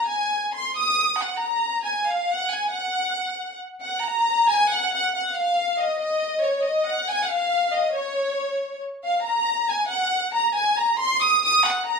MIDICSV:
0, 0, Header, 1, 2, 480
1, 0, Start_track
1, 0, Key_signature, 6, "major"
1, 0, Tempo, 439239
1, 85, Time_signature, 6, 3, 24, 8
1, 5364, Tempo, 434783
1, 13187, End_track
2, 0, Start_track
2, 0, Title_t, "Violin section"
2, 0, Program_c, 0, 48
2, 85, Note_on_c, 0, 80, 68
2, 541, Note_off_c, 0, 80, 0
2, 595, Note_on_c, 0, 84, 77
2, 803, Note_off_c, 0, 84, 0
2, 829, Note_on_c, 0, 87, 88
2, 1270, Note_off_c, 0, 87, 0
2, 1304, Note_on_c, 0, 78, 65
2, 1522, Note_on_c, 0, 82, 76
2, 1529, Note_off_c, 0, 78, 0
2, 2006, Note_off_c, 0, 82, 0
2, 2025, Note_on_c, 0, 80, 69
2, 2231, Note_off_c, 0, 80, 0
2, 2265, Note_on_c, 0, 77, 67
2, 2504, Note_off_c, 0, 77, 0
2, 2530, Note_on_c, 0, 78, 77
2, 2740, Note_off_c, 0, 78, 0
2, 2740, Note_on_c, 0, 80, 67
2, 2960, Note_off_c, 0, 80, 0
2, 2972, Note_on_c, 0, 78, 72
2, 3895, Note_off_c, 0, 78, 0
2, 4171, Note_on_c, 0, 78, 68
2, 4386, Note_off_c, 0, 78, 0
2, 4410, Note_on_c, 0, 82, 88
2, 4897, Note_off_c, 0, 82, 0
2, 4906, Note_on_c, 0, 80, 98
2, 5133, Note_off_c, 0, 80, 0
2, 5141, Note_on_c, 0, 78, 91
2, 5385, Note_off_c, 0, 78, 0
2, 5398, Note_on_c, 0, 78, 83
2, 5608, Note_off_c, 0, 78, 0
2, 5636, Note_on_c, 0, 78, 68
2, 5843, Note_off_c, 0, 78, 0
2, 5847, Note_on_c, 0, 77, 78
2, 6332, Note_off_c, 0, 77, 0
2, 6343, Note_on_c, 0, 75, 79
2, 6555, Note_off_c, 0, 75, 0
2, 6568, Note_on_c, 0, 75, 87
2, 7015, Note_off_c, 0, 75, 0
2, 7047, Note_on_c, 0, 73, 74
2, 7268, Note_on_c, 0, 75, 77
2, 7278, Note_off_c, 0, 73, 0
2, 7523, Note_on_c, 0, 78, 80
2, 7527, Note_off_c, 0, 75, 0
2, 7759, Note_off_c, 0, 78, 0
2, 7785, Note_on_c, 0, 80, 93
2, 7931, Note_off_c, 0, 80, 0
2, 7939, Note_on_c, 0, 78, 59
2, 7986, Note_on_c, 0, 77, 84
2, 8003, Note_off_c, 0, 78, 0
2, 8473, Note_off_c, 0, 77, 0
2, 8478, Note_on_c, 0, 75, 75
2, 8709, Note_off_c, 0, 75, 0
2, 8718, Note_on_c, 0, 73, 79
2, 9646, Note_off_c, 0, 73, 0
2, 9923, Note_on_c, 0, 77, 70
2, 10142, Note_off_c, 0, 77, 0
2, 10157, Note_on_c, 0, 82, 84
2, 10617, Note_off_c, 0, 82, 0
2, 10649, Note_on_c, 0, 80, 77
2, 10855, Note_on_c, 0, 78, 82
2, 10886, Note_off_c, 0, 80, 0
2, 11327, Note_off_c, 0, 78, 0
2, 11361, Note_on_c, 0, 82, 81
2, 11588, Note_off_c, 0, 82, 0
2, 11588, Note_on_c, 0, 80, 79
2, 11836, Note_on_c, 0, 82, 86
2, 11838, Note_off_c, 0, 80, 0
2, 12082, Note_on_c, 0, 84, 94
2, 12086, Note_off_c, 0, 82, 0
2, 12307, Note_off_c, 0, 84, 0
2, 12320, Note_on_c, 0, 87, 98
2, 12575, Note_off_c, 0, 87, 0
2, 12588, Note_on_c, 0, 87, 95
2, 12802, Note_off_c, 0, 87, 0
2, 12822, Note_on_c, 0, 78, 79
2, 13050, Note_off_c, 0, 78, 0
2, 13053, Note_on_c, 0, 82, 93
2, 13187, Note_off_c, 0, 82, 0
2, 13187, End_track
0, 0, End_of_file